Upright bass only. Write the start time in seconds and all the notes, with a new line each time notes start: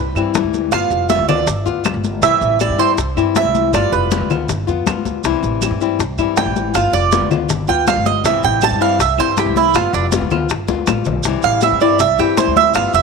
Already playing: C2
0.15 G2
0.43 D2
0.71 G1
0.90 F1
1.19 D2
1.47 G1
1.65 D2
1.94 G1
2.22 C2
2.41 A1
2.69 G2
2.98 C2
3.17 G2
3.45 C2
3.73 G1
3.92 F1
4.20 D2
4.49 G1
4.68 F2
4.87 E2
5.05 D2
5.24 C2
5.43 A1
5.71 G2
5.99 C2
6.18 G2
6.46 A1
6.74 G1
6.93 F1
7.21 D2
7.49 G1
7.68 D2
7.96 G1
8.24 C2
8.43 A1
8.71 G2
8.99 C2
9.18 G2
9.46 C2
9.74 G1
9.93 F1
10.21 D2
10.50 G1
10.68 D2
10.87 A1
11.06 B1
11.25 C2
11.44 A1
11.72 G2
12.00 C2
12.19 G2
12.47 D2
12.75 G1
12.94 F1